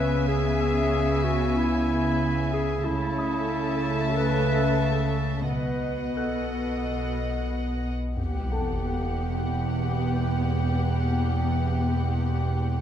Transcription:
Already playing: C#2 C#3 B3 B4 E5 G#5
0.28 G#4
0.60 E6
1.24 F#4
1.57 E4
2.53 G#4
2.84 C#2 C#3 A3 E4 E5 A5
3.18 D#6
4.16 B4
5.48 B1 B2 B3 B4 D#5 F#5
6.17 A4 F#6
8.16 E1 E2 B3 G4 F#5, sub drop
8.52 A4 A5

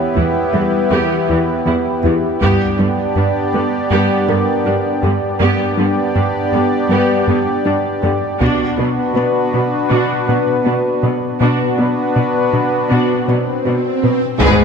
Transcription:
Already playing: B3 C#4 E4 G4 B4 C#5
0.15 E2 G3 E4
0.53 E2 E3 G3 B3 B4
0.91 E2 E3 B3 G4
1.29 E2 E3 B3 E4
1.66 E2 E3 G3 B3 E4
2.04 E2 E3 B3 E4 G4
2.39 G2 G3 B3 D4 G4 D5, taiko
2.79 G2 D3 G3 B3 D4
3.16 G2 G3 D4 G4
3.53 G2 D3 B3
3.90 G2 G3 B3 G4
4.28 G2 D3 B3 G4 A#4
4.65 G2 G3 D4
5.03 G2 D3 B3 G4
5.40 G2 G3 B3 D4 G4 D5
5.77 G2 D3 G3 B3 D4
6.15 G2 G3 D4 G4
6.52 G2 D3 B3
6.89 G2 G3 B3 G4 B4
7.28 G2 D3 B3 G4
7.65 G2 G3 D4
8.02 G2 D3 B3 G4 D5
8.40 B2 B3 D4 F#4 B4, taiko
8.78 B2 F#3 B3 F#4
9.16 B2 B3 D4 B4
9.53 B2 F#3 B3 D4
9.90 B2 B3 D4 F#4
10.28 B2 F#3 B3 B4
10.65 B2 B3 D4 F#4
11.03 B2 F#3 B3 B4
11.40 B2 B3 D4 F#4 B4, swell
11.78 B2 F#3 B3 F#4
12.15 B2 B3 D4 B4
12.53 B2 F#3 B3 D4
12.90 B2 B3 D4 F#4
13.28 B2 F#3 B3 B4
13.66 B2 B3 D4 F#4
14.03 B2 F#3 B3 B4
14.39 G#1 G#2 G#3 B3 D#4 G#4 B4, taiko, impact

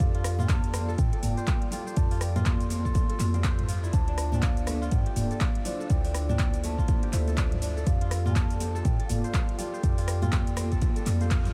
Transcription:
Already playing: A3 D4 F4 G4 A4 D5
0.00 F2 F4 G4 A4 D5 F5, kick, closed hi-hat, shaker
0.15 F4, closed hi-hat
0.24 cross-stick, open hi-hat, shaker
0.39 F4, mid tom, high conga, shaker
0.49 F5 A5, kick, clap, closed hi-hat, high conga, shaker
0.64 closed hi-hat, shaker
0.73 C4, cross-stick, open hi-hat, high conga, shaker
0.88 A4, shaker
0.98 A2 G5, kick, closed hi-hat, shaker
1.13 A4, closed hi-hat
1.23 F1, mid tom, open hi-hat, high conga, shaker
1.37 C5, closed hi-hat, shaker
1.47 F5, kick, clap, closed hi-hat, high conga, low conga, shaker
1.62 closed hi-hat
1.71 F4 G4 A4 D5 G5, open hi-hat, low conga, shaker
1.87 C5, shaker
1.96 F2 F4 G4 A4 D5 A5, kick, closed hi-hat, shaker
2.11 F4, open hi-hat
2.21 G5, cross-stick, open hi-hat, shaker
2.36 F4, closed hi-hat, mid tom, high conga, low conga, shaker
2.46 F5 C6, kick, clap, closed hi-hat, high conga, shaker
2.60 closed hi-hat, shaker
2.70 C4 C6, open hi-hat, high conga, shaker
2.85 A4, kick, shaker
2.94 kick, closed hi-hat, high conga, low conga, shaker
3.10 A4, closed hi-hat
3.19 F2, clap, open hi-hat, high conga, shaker
3.34 C4 F4 G4 A4 F5, closed hi-hat, high conga, shaker
3.44 C5, kick, clap, closed hi-hat, shaker
3.59 closed hi-hat, mid tom, low conga
3.69 F4, open hi-hat, shaker
3.83 E4, shaker
3.93 D2 D4 F4 A4 C5 D5 A5, kick, closed hi-hat, shaker
4.08 D4, closed hi-hat
4.18 cross-stick, open hi-hat, shaker
4.32 D4, mid tom, high conga, shaker
4.42 F5, kick, clap, closed hi-hat, high conga, shaker
4.57 closed hi-hat, shaker
4.66 A3, cross-stick, open hi-hat, high conga, shaker
4.82 F4, shaker
4.91 G2 G5, kick, closed hi-hat, shaker
5.06 G4, closed hi-hat
5.16 D1, mid tom, open hi-hat, high conga, shaker
5.31 A4, closed hi-hat, shaker
5.40 D5 F5, kick, clap, closed hi-hat, high conga, low conga, shaker
5.55 closed hi-hat
5.65 D4 E4 F4 C5 D5, open hi-hat, low conga, shaker
5.80 A4, shaker
5.90 D2 E4 F4 C5 D5 G5, kick, closed hi-hat, shaker
6.05 D4, open hi-hat
6.14 cross-stick, open hi-hat, shaker
6.29 D4 G5, mid tom, high conga, low conga, shaker
6.39 D5, kick, clap, closed hi-hat, high conga, shaker
6.54 closed hi-hat, shaker
6.64 A3 A5, open hi-hat, high conga, shaker
6.78 F4, kick, shaker
6.88 kick, closed hi-hat, high conga, low conga, shaker
7.03 G4, closed hi-hat
7.12 D2 E4 F4 C5 E5, clap, open hi-hat, high conga, shaker
7.28 A4, closed hi-hat, high conga, shaker
7.37 D5, kick, clap, closed hi-hat, shaker
7.52 closed hi-hat, mid tom, low conga
7.62 D4, open hi-hat, shaker
7.77 A4, shaker
7.86 F2 F4 G4 A4 D5 F5, kick, closed hi-hat, shaker
8.01 F4, closed hi-hat
8.11 cross-stick, open hi-hat, shaker
8.26 F4, mid tom, high conga, shaker
8.35 F5 A5, kick, clap, closed hi-hat, high conga, shaker
8.50 closed hi-hat, shaker
8.60 C4, open hi-hat, high conga, shaker
8.75 A4, shaker
8.85 A2 G5, kick, closed hi-hat, shaker
9.00 A4, closed hi-hat
9.09 F1 F5, mid tom, open hi-hat, high conga, shaker
9.24 C5, closed hi-hat, shaker
9.33 F5, kick, clap, closed hi-hat, high conga, low conga, shaker
9.49 closed hi-hat
9.58 F4 G4 A4 D5 G5, open hi-hat, low conga, shaker
9.73 C5, shaker
9.83 F2 F4 G4 A4 D5, kick, closed hi-hat, shaker
9.98 F4, open hi-hat, shaker
10.08 cross-stick, open hi-hat, shaker
10.22 F4, closed hi-hat, mid tom, high conga, low conga, shaker
10.32 F5, kick, clap, closed hi-hat, high conga, shaker
10.47 closed hi-hat, shaker
10.56 C4, cross-stick, open hi-hat, high conga, shaker
10.72 A4, kick, closed hi-hat, shaker
10.81 kick, closed hi-hat, high conga, low conga, shaker
10.96 A4, closed hi-hat, shaker
11.06 F2, clap, open hi-hat, high conga, low conga, shaker
11.20 F4 G4 A4 C5 F5, closed hi-hat, high conga, shaker
11.31 F5, kick, clap, closed hi-hat, shaker
11.45 closed hi-hat, mid tom, low conga, shaker

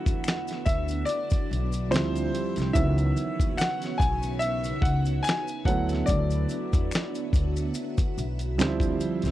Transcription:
Already playing: D3 F#3 A3 B3 E4 F#4 E5 F#5
0.06 E2, kick, closed hi-hat, maracas
0.24 finger snap, closed hi-hat, maracas
0.28 finger snap, snare
0.48 snare, closed hi-hat, maracas
0.66 D2 E5, kick, closed hi-hat, maracas
0.88 closed hi-hat, maracas
1.05 D5, closed hi-hat, maracas
1.30 muted upright bass stroke, kick, closed hi-hat, maracas
1.51 B1, closed hi-hat
1.72 closed hi-hat, maracas
1.91 D2 F3 G3 C4 E4 G4 C5 E5, finger snap, closed hi-hat, maracas
1.96 finger snap, snare
2.16 closed hi-hat, maracas
2.35 closed hi-hat
2.56 C2, snare, closed hi-hat, maracas
2.73 C#2 C#3 D#3 F#3 B3 F#4 C#5 E5, kick, closed hi-hat, maracas
2.78 D#3 E3
2.98 closed hi-hat, maracas
3.17 closed hi-hat, maracas
3.40 D#2, kick, closed hi-hat, maracas
3.57 F#5, finger snap, snare, closed hi-hat, maracas
3.62 finger snap
3.82 snare, closed hi-hat, maracas
3.98 B1 G#5, kick, maracas
4.02 closed hi-hat
4.23 closed hi-hat, maracas
4.39 E5, closed hi-hat, maracas
4.64 closed hi-hat, maracas
4.82 C#2 F#5, kick, closed hi-hat
5.05 closed hi-hat, maracas
5.23 G#5, finger snap, maracas
5.27 finger snap, snare, closed hi-hat
5.48 closed hi-hat, maracas
5.65 D2 D3 F#3 A3 B3 F#4 E5 F#5, kick, closed hi-hat
5.70 E4
5.89 closed hi-hat, maracas
5.93 snare
6.06 D2 D5, kick, closed hi-hat, maracas
6.30 closed hi-hat, maracas
6.49 closed hi-hat, maracas
6.73 E2, kick, closed hi-hat, maracas
6.91 finger snap, snare, closed hi-hat, maracas
6.96 finger snap
7.15 closed hi-hat, maracas
7.33 D2, kick, closed hi-hat, maracas
7.56 closed hi-hat, maracas
7.74 closed hi-hat, maracas
7.98 muted upright bass stroke, kick, closed hi-hat, maracas
8.18 B1, closed hi-hat, maracas
8.39 closed hi-hat, maracas
8.58 D2 D3 F3 G3 C4 D#4 G4, finger snap, snare, closed hi-hat, maracas
8.62 finger snap
8.67 E4
8.80 kick, closed hi-hat, maracas
9.00 closed hi-hat, maracas
9.22 C2, snare, closed hi-hat, maracas

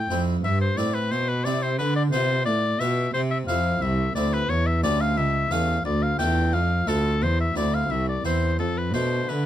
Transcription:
Already playing: G5
0.10 F2 C4 E4
0.43 G2 E5
0.61 C5
0.77 A2 C4 E4 D5
0.94 B4
1.12 B2 C5
1.28 B4
1.45 C3 C4 E4 D5
1.63 C5
1.78 D3 B4
1.96 D5
2.12 C3 B3 F4 C5
2.46 A2 D5
2.80 B2 B3 F4 E5
3.14 C3 C5
3.31 E5
3.48 F2 C4 E4 F5
3.81 C2 E5
4.15 D2 C4 E4 D5
4.34 B4
4.50 E2 C#5
4.67 E5
4.83 D2 A3 C#4 G4 D5
5.01 F5
5.17 C#2 E5
5.51 E2 A3 C#4 G4 F5
5.85 D2 D5
6.03 F5
6.19 E2 A3 D4 F4 G5
6.53 F2 F5
6.87 D2 A3 D4 F4 A4
7.22 E2 C5
7.40 E5
7.56 D2 C4 E4 D5
7.74 F5
7.90 C2 E5
8.09 D5
8.24 E2 C4 E4 C5
8.59 F2 A4
8.77 B4
8.93 B2 A3 D4 C5
9.28 D3 B4

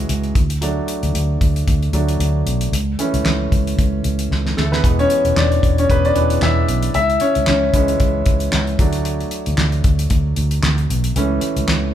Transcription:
Already playing: E3 F#3 G#3 C#4 E4 F#4 G#4
0.09 C#2, closed hi-hat
0.24 closed hi-hat
0.35 D2, kick, closed hi-hat
0.50 closed hi-hat
0.61 F#3 A3 D4, closed hi-hat
0.88 closed hi-hat
1.03 D2, closed hi-hat
1.14 D2, closed hi-hat
1.41 D2, kick, closed hi-hat
1.56 closed hi-hat
1.67 D2, kick, closed hi-hat
1.83 closed hi-hat
1.93 D2 F#3 A3 D4, closed hi-hat
2.08 closed hi-hat
2.19 D2, closed hi-hat
2.46 B1, closed hi-hat
2.61 closed hi-hat
2.72 C#2, closed hi-hat
2.99 E3 A3 C#4, closed hi-hat
3.14 C#2, closed hi-hat
3.25 C#2, snare, clap
3.52 C#2, kick, closed hi-hat
3.67 closed hi-hat
3.79 C#2, kick, closed hi-hat
4.04 C#2, closed hi-hat
4.19 closed hi-hat
4.31 C#2, snare
4.46 snare
4.57 D2 A3 A4, snare
4.72 B3 B4, snare
4.84 E1 E3 G#3 B3, kick, closed hi-hat
4.99 C#4 C#5, closed hi-hat
5.10 closed hi-hat
5.25 E1, closed hi-hat
5.37 E1 D4 D5, snare, clap
5.52 closed hi-hat
5.63 E1, kick, closed hi-hat
5.78 C#4 C#5, closed hi-hat
5.90 E1 B3 B4, kick, closed hi-hat
6.05 D4 D5, closed hi-hat
6.16 E1 E3 G#3 B3, closed hi-hat
6.30 closed hi-hat
6.42 E1 E4 E5, snare, clap
6.68 B1, closed hi-hat
6.83 closed hi-hat
6.94 C#2 E4 E5, closed hi-hat
7.10 closed hi-hat
7.20 C#4 C#5, closed hi-hat
7.35 C#2, closed hi-hat
7.47 C#2 C#4 C#5, snare, clap
7.74 C#2 E3 G#3 C#4, kick, closed hi-hat
7.88 closed hi-hat
8.00 C#2, kick, closed hi-hat
8.26 C#2, kick, closed hi-hat
8.40 closed hi-hat
8.52 C#2, snare, clap
8.67 closed hi-hat
8.79 D2 F#3 A3 D4, kick, closed hi-hat
8.93 closed hi-hat
9.05 closed hi-hat
9.20 closed hi-hat
9.31 closed hi-hat
9.46 D2, closed hi-hat
9.58 D2, snare, clap
9.72 closed hi-hat
9.84 D2, kick, closed hi-hat
9.99 closed hi-hat
10.10 D2, kick, closed hi-hat
10.36 D2, closed hi-hat
10.51 closed hi-hat
10.63 D2, snare, clap
10.78 closed hi-hat
10.90 B1, closed hi-hat
11.04 closed hi-hat
11.16 C#2 E3 A3 C#4, closed hi-hat
11.41 closed hi-hat
11.56 C#2, closed hi-hat
11.68 C#2, snare, clap

